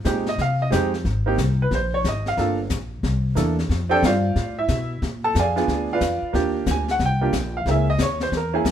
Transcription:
0.05 0.37 A#2 medium
0.05 0.24 G#3 medium
0.05 0.25 C4 medium
0.05 0.25 D#4 medium
0.05 0.25 G4 medium
0.05 kick soft
0.05 snare medium
0.05 hi-hat pedal medium
0.26 0.39 D#5 medium
0.26 snare soft
0.38 0.71 C3 medium
0.38 0.61 F5 medium
0.38 brush sweep soft
0.38 kick soft
0.38 snare soft
0.62 0.69 D#5 medium
0.71 1.04 F2 medium
0.71 0.90 G#3 medium
0.71 0.91 C4 medium
0.71 0.91 D#4 medium
0.71 0.91 G4 medium
0.71 kick soft
0.71 snare medium
0.71 hi-hat pedal medium
0.94 snare soft
1.05 1.37 G#1 medium
1.05 brush sweep soft
1.05 kick soft
1.05 snare soft
1.26 1.37 A#3 medium
1.26 1.37 C4 medium
1.26 1.37 D#4 medium
1.26 1.38 G4 medium
1.38 1.70 C2 medium
1.38 kick soft
1.38 snare medium
1.38 hi-hat pedal medium
1.62 1.72 B4 medium
1.71 2.03 A#1 medium
1.71 1.93 C5 medium
1.71 brush sweep soft
1.71 kick soft
1.71 snare soft
1.94 2.05 C#5 medium
2.04 2.36 G#1 medium
2.04 kick soft
2.04 snare medium
2.04 hi-hat pedal medium
2.08 2.27 D#5 medium
2.26 2.58 F5 medium
2.26 snare soft
2.37 2.69 G1 medium
2.37 2.56 A#3 medium
2.37 2.57 D4 medium
2.37 2.57 F4 medium
2.37 2.57 A4 medium
2.37 brush sweep soft
2.37 kick soft
2.37 snare soft
2.70 3.02 A#1 medium
2.70 kick soft
2.70 snare medium
2.70 hi-hat pedal medium
3.03 3.35 C2 medium
3.03 brush sweep soft
3.03 kick soft
3.03 snare soft
3.35 3.69 E2 medium
3.35 3.55 A#3 medium
3.35 3.55 D4 medium
3.35 3.55 E4 medium
3.35 3.56 A4 medium
3.35 kick soft
3.35 snare medium
3.35 hi-hat pedal medium
3.59 snare soft
3.69 4.01 F2 medium
3.69 brush sweep medium
3.69 kick soft
3.69 snare soft
3.89 4.01 C4 medium
3.89 4.01 D4 medium
3.89 4.01 G4 medium
3.89 4.02 A4 medium
3.89 4.03 C5 medium
3.89 4.03 D5 medium
3.89 4.02 G5 loud
4.03 4.35 G2 medium
4.03 4.55 F4 medium
4.03 4.55 C5 medium
4.03 4.55 D5 medium
4.03 4.55 F5 medium
4.03 kick soft
4.03 snare medium
4.03 hi-hat pedal medium
4.36 4.68 A2 medium
4.36 brush sweep medium
4.36 kick soft
4.36 snare soft
4.59 5.00 E4 medium
4.59 5.00 E5 medium
4.68 5.01 B2 medium
4.68 kick soft
4.68 snare medium
4.68 hi-hat pedal soft
5.02 5.34 A#2 medium
5.02 brush sweep soft
5.02 kick soft
5.02 snare soft
5.24 5.35 A4 medium
5.24 5.35 A5 loud
5.35 5.67 F2 medium
5.35 kick soft
5.35 snare medium
5.35 hi-hat pedal medium
5.39 5.56 G#4 medium
5.39 5.88 D5 medium
5.39 5.88 F5 medium
5.39 5.88 G#5 medium
5.56 5.99 B3 medium
5.56 5.99 D4 medium
5.56 5.91 F4 medium
5.56 5.99 G#4 medium
5.56 snare soft
5.68 6.00 D2 medium
5.68 brush sweep soft
5.68 kick soft
5.68 snare soft
5.93 6.32 F4 medium
5.93 6.33 B4 medium
5.93 6.33 D5 medium
5.93 6.33 F5 medium
6.01 6.21 F2 medium
6.01 kick soft
6.01 snare medium
6.01 hi-hat pedal medium
6.22 muted upright bass stroke soft
6.33 6.66 D#2 medium
6.33 6.83 A#3 medium
6.33 6.84 D4 medium
6.33 6.84 F4 medium
6.33 6.84 G4 medium
6.33 brush sweep soft
6.33 kick soft
6.33 snare soft
6.66 6.99 D2 medium
6.66 kick soft
6.66 snare medium
6.66 hi-hat pedal medium
6.71 6.90 G#5 medium
6.88 7.01 F#5 medium
6.88 snare soft
6.99 7.32 C2 medium
6.99 brush sweep soft
6.99 kick soft
6.99 snare soft
7.05 7.53 G5 medium
7.21 7.32 A#3 medium
7.21 7.32 D4 medium
7.21 7.32 F4 medium
7.21 7.32 G4 medium
7.33 7.65 A#1 medium
7.33 kick soft
7.33 snare medium
7.33 hi-hat pedal medium
7.57 7.67 F5 medium
7.66 7.98 C#2 medium
7.66 7.86 A#3 medium
7.66 7.86 C#4 medium
7.66 7.86 E4 medium
7.66 7.86 G#4 medium
7.66 brush sweep medium
7.66 kick soft
7.66 snare soft
7.71 7.89 E5 medium
7.90 8.00 D#5 loud
7.99 8.31 D#2 medium
7.99 8.21 C#5 medium
7.99 kick soft
7.99 snare medium
7.99 hi-hat pedal medium
8.20 8.33 C5 medium
8.20 snare soft
8.32 8.64 E2 medium
8.32 brush sweep soft
8.32 kick soft
8.32 snare soft
8.37 8.71 A#4 medium
8.53 8.64 A#3 medium
8.53 8.64 C#4 medium
8.53 8.64 E4 medium
8.53 8.64 G#4 medium
8.65 8.71 F#2 medium
8.65 kick soft
8.65 snare medium
8.65 hi-hat pedal medium

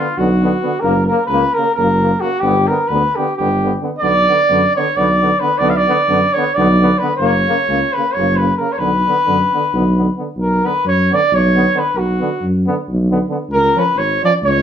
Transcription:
0.00 0.19 F4 medium
0.17 0.54 B1 medium
0.17 0.29 D3 medium
0.17 0.29 B3 medium
0.17 0.82 F#4 medium
0.43 0.51 D3 medium
0.43 0.51 B3 medium
0.63 0.71 D3 medium
0.63 0.71 B3 medium
0.80 1.09 F#1 medium
0.80 0.93 C#3 medium
0.80 0.94 A#3 medium
0.80 1.06 A#4 medium
1.06 1.18 C#3 medium
1.06 1.25 A#4 medium
1.10 1.19 A#3 medium
1.26 1.41 C#3 medium
1.26 1.55 B4 medium
1.30 1.45 C#2 medium
1.30 1.42 A#3 medium
1.54 1.66 C#3 medium
1.54 1.74 A#4 medium
1.58 1.67 A#3 medium
1.75 2.13 F#1 loud
1.75 1.88 C#3 medium
1.75 1.88 A#3 medium
1.75 2.22 A#4 medium
2.01 2.09 C#3 medium
2.01 2.11 A#3 medium
2.21 2.30 C#3 medium
2.21 2.31 A#3 medium
2.21 2.41 F#4 medium
2.40 2.68 G1 medium
2.40 2.53 D3 medium
2.40 2.54 B3 medium
2.40 2.69 G4 medium
2.67 2.78 D3 medium
2.67 2.79 B3 medium
2.67 2.90 A#4 medium
2.88 3.05 D2 medium
2.88 3.01 D3 medium
2.88 3.17 B4 medium
2.92 3.03 B3 medium
3.16 3.26 D3 medium
3.16 3.27 B3 medium
3.16 3.36 G4 medium
3.37 3.74 G1 medium
3.37 3.49 D3 medium
3.37 3.49 B3 medium
3.37 3.73 G4 medium
3.63 3.70 D3 medium
3.63 3.72 B3 medium
3.81 3.89 D3 medium
3.81 3.91 B3 soft
3.99 4.29 B1 medium
3.99 4.12 D3 medium
3.99 4.13 B3 medium
3.99 4.72 D5 loud
4.29 4.37 D3 medium
4.29 4.37 B3 medium
4.49 4.65 F#2 medium
4.49 4.62 D3 medium
4.49 4.60 B3 medium
4.76 4.86 D3 medium
4.76 4.85 B3 medium
4.76 4.98 C#5 medium
4.97 5.32 B1 medium
4.97 5.07 D3 medium
4.97 5.07 B3 medium
4.97 5.41 D5 loud
5.22 5.30 D3 medium
5.22 5.30 B3 medium
5.40 5.49 D3 medium
5.40 5.50 B3 medium
5.40 5.59 B4 medium
5.58 5.87 B1 medium
5.58 5.71 D3 medium
5.58 5.71 D5 medium
5.62 5.73 B3 medium
5.70 5.78 F5 medium
5.77 6.35 D5 loud
5.88 5.97 D3 medium
5.88 5.96 B3 medium
6.08 6.24 F#2 medium
6.08 6.20 D3 medium
6.08 6.20 B3 medium
6.33 6.44 D3 medium
6.33 6.45 B3 medium
6.33 6.56 C#5 medium
6.54 6.92 B1 loud
6.54 6.67 D3 medium
6.54 7.00 D5 medium
6.59 6.68 B3 medium
6.81 6.89 D3 medium
6.81 6.89 B3 medium
6.98 7.10 D3 medium
6.98 7.10 B3 medium
6.98 7.16 B4 medium
7.17 7.46 F#1 medium
7.17 7.94 C#5 medium
7.21 7.32 C#3 medium
7.21 7.32 A#3 medium
7.48 7.57 C#3 medium
7.48 7.56 A#3 medium
7.68 7.83 C#2 medium
7.68 7.80 C#3 medium
7.68 7.80 A#3 medium
7.93 8.04 C#3 medium
7.93 8.15 B4 medium
7.98 8.06 A#3 medium
8.13 8.51 F#1 medium
8.13 8.27 C#3 medium
8.13 8.26 A#3 medium
8.13 8.38 C#5 medium
8.37 8.48 A#3 medium
8.37 8.56 B4 medium
8.41 8.49 C#3 medium
8.57 8.68 C#3 medium
8.57 8.67 A#3 medium
8.57 8.74 A#4 medium
8.72 8.80 C#5 medium
8.78 9.05 B1 medium
8.78 8.91 D3 medium
8.78 8.91 B3 medium
8.78 10.17 B4 medium
9.07 9.15 D3 medium
9.07 9.16 B3 medium
9.26 9.42 F#2 medium
9.26 9.37 D3 medium
9.26 9.39 B3 medium
9.53 9.62 D3 medium
9.53 9.62 B3 medium
9.74 10.08 B1 medium
9.74 9.84 D3 medium
9.74 9.84 B3 medium
9.97 10.07 D3 medium
9.97 10.05 B3 medium
10.18 10.26 D3 medium
10.18 10.25 B3 soft
10.37 10.63 B1 medium
10.37 10.67 A#4 medium
10.64 10.73 D3 medium
10.64 10.72 B3 medium
10.64 10.85 B4 medium
10.85 11.11 F#2 medium
10.85 11.15 C#5 loud
11.11 11.20 D3 medium
11.11 11.19 B3 soft
11.11 11.36 D5 loud
11.32 11.66 B1 loud
11.32 11.80 C#5 loud
11.55 11.63 D3 medium
11.55 11.64 B3 medium
11.74 11.82 D3 medium
11.74 11.83 B3 medium
11.79 11.99 B4 medium
11.94 12.20 B1 medium
11.94 12.49 F#4 medium
12.20 12.29 D3 medium
12.20 12.28 B3 medium
12.42 12.67 F#2 medium
12.67 12.76 D3 medium
12.67 12.75 B3 medium
12.88 13.22 B1 medium
13.11 13.19 D3 medium
13.11 13.19 B3 medium
13.29 13.37 D3 medium
13.29 13.38 B3 medium
13.49 13.75 C#2 medium
13.49 13.80 A#4 loud
13.75 13.84 F3 medium
13.75 13.84 C#4 medium
13.75 13.99 B4 medium
13.95 14.21 G#1 medium
13.95 14.24 C#5 medium
14.24 14.31 F3 medium
14.24 14.32 C#4 medium
14.24 14.33 D5 medium
14.42 14.62 C#2 loud
14.42 14.62 C#5 loud

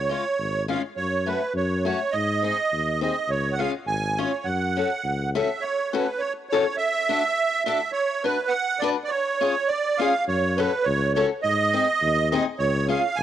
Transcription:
0.00 0.18 C#2 medium
0.00 0.66 C#5 medium
0.09 0.22 G#3 medium
0.09 0.23 C#4 soft
0.09 0.23 F4 medium
0.38 0.76 G#1 medium
0.68 0.81 G#3 medium
0.68 0.81 C#4 medium
0.68 0.82 F4 medium
0.68 0.82 F5 medium
0.97 1.35 F#2 medium
0.97 1.29 C#5 medium
1.26 1.39 A3 medium
1.26 1.40 C#4 medium
1.26 1.40 F#4 medium
1.26 1.53 B4 medium
1.55 1.93 F#2 loud
1.55 1.84 C#5 medium
1.85 1.98 A3 medium
1.85 1.98 C#4 medium
1.85 1.99 F#4 medium
1.85 2.15 C#5 medium
2.12 2.52 G#2 medium
2.12 3.00 D#5 loud
2.42 2.56 C4 soft
2.42 2.56 D#4 soft
2.42 2.57 G#4 medium
2.72 3.10 D#2 medium
3.01 3.14 C4 medium
3.01 3.15 D#4 medium
3.01 3.15 G#4 medium
3.01 3.30 D#5 medium
3.28 3.66 C#2 medium
3.28 3.54 C#5 loud
3.53 3.60 F#5 medium
3.59 3.72 C#4 medium
3.59 3.73 F4 medium
3.59 3.73 G#4 medium
3.59 3.72 F5 loud
3.87 4.25 G#1 medium
3.87 4.19 G#5 loud
4.18 4.31 C#4 medium
4.18 4.31 F4 medium
4.18 4.31 G#4 medium
4.18 4.46 C#5 medium
4.44 4.83 F#2 medium
4.44 5.30 F#5 medium
4.77 4.89 C#4 medium
4.77 4.90 F#4 soft
4.77 4.90 A4 medium
5.04 5.42 C#2 medium
5.35 5.47 C#4 medium
5.35 5.48 F#4 medium
5.35 5.48 A4 medium
5.35 5.63 E5 medium
5.61 5.93 C#5 medium
5.93 6.06 C#4 medium
5.93 6.06 F#4 medium
5.93 6.06 A4 medium
5.93 6.21 B4 medium
6.19 6.33 C#5 medium
6.49 6.65 A4 medium
6.49 6.76 C#5 medium
6.53 6.64 C#4 medium
6.53 6.65 F#4 medium
6.77 7.63 E5 loud
7.09 7.22 D4 medium
7.09 7.22 F#4 medium
7.09 7.22 A4 medium
7.65 7.79 D4 medium
7.65 7.79 F#4 medium
7.65 7.80 A4 loud
7.65 7.91 E5 medium
7.92 8.25 C#5 loud
8.24 8.37 D4 medium
8.24 8.37 F#4 medium
8.24 8.53 B4 medium
8.24 8.38 B4 medium
8.48 8.82 F#5 loud
8.79 8.95 D4 medium
8.79 8.95 F#4 medium
8.79 8.90 D5 medium
8.84 8.96 B4 medium
9.04 9.10 D5 medium
9.09 9.70 C#5 loud
9.41 9.53 C#4 medium
9.41 9.54 F4 medium
9.41 9.54 G#4 medium
9.68 10.00 D5 loud
9.98 10.12 C#4 medium
9.98 10.12 F4 medium
9.98 10.13 G#4 medium
9.98 10.24 F5 loud
10.28 10.66 F#2 medium
10.28 10.59 C#5 loud
10.57 10.70 C#4 medium
10.57 10.71 F#4 medium
10.57 10.71 A4 medium
10.57 10.86 B4 medium
10.83 11.24 C#2 loud
10.83 11.12 C#5 loud
11.14 11.29 C#4 medium
11.14 11.29 F#4 medium
11.14 11.29 A4 medium
11.14 11.27 C#5 loud
11.43 11.82 G#2 medium
11.43 12.29 D#5 loud
11.74 11.86 C4 medium
11.74 11.86 D#4 medium
11.74 11.87 G#4 medium
12.01 12.39 D#2 loud
12.31 12.44 C4 medium
12.31 12.45 D#4 medium
12.31 12.45 G#4 medium
12.31 12.43 D#5 loud
12.59 12.97 C#2 loud
12.59 12.87 C#5 loud
12.88 13.02 C#4 medium
12.88 13.02 F4 medium
12.88 13.02 G#4 medium
12.88 13.18 F5 medium
13.16 13.23 G#1 loud
13.16 13.23 G#5 loud

